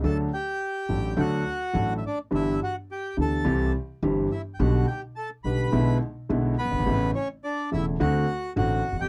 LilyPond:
<<
  \new Staff \with { instrumentName = "Bandoneon" } { \time 4/4 \key g \major \tempo 4 = 106 << { a''8 g''4. fis''4~ fis''16. e''32 d''8 | e''8 fis''8 g''8 a''4 r4 e''16. g''32 | fis''8 g''8 a''8 b''4 r4 b'8~ | b'8 cis''8 d''8 e''8 fis''4 fis''8. g''16 | } \\ { a'8 g'4. fis'4. d'8 | e'8 fis'8 g'8 a'4 r4 e'8 | fis'8 g'8 a'8 b'4 r4 b8~ | b8 cis'8 d'8 e'8 fis'4 fis'8. g'16 | } >> }
  \new Staff \with { instrumentName = "Grand piano" } { \clef bass \time 4/4 \key g \major <d, d fis a d' a'>8 r4 <a,, a, fis a d' a'>8 <d, d fis a d' a'>8 r8 <a,, a, fis a d' a'>8 r8 | <g,, g, e b d' g'>8 r4 <d, d e b d' g'>8 <c, c e g c' g'>8 r8 <g,, g, e g c' g'>8 r8 | <b,, b, d g b g'>8 r4 <b,, b, d g b g'>8 <b,, b, d gis b e'>8 r8 <b,, b, d gis b e'>8 r32 fis,,32 g,,32 gis,,32 | <a,, a, cis e a e'>8 r4 <e,, e, cis e a e'>8 <d, d a c' fis'>8 r8 <a,, a, d a c' fis'>8 r32 e,32 f,32 r32 | }
  \new Staff \with { instrumentName = "Upright bass" } { \clef bass \time 4/4 \key g \major d,16. r4 r32 a,,16. r32 d,16. r8 r32 a,,16. r8 r32 | g,,16. r4 r32 d,16. r32 c,16. r8 r32 g,,16. r8 r32 | b,,16. r4 r32 b,,16. r32 b,,16. r8 r32 b,,16. r16 fis,,32 g,,32 gis,,32 | a,,16. r4 r32 e,,16. r32 d,16. r8 r32 a,,16. r16 e,,32 f,,32 r32 | }
>>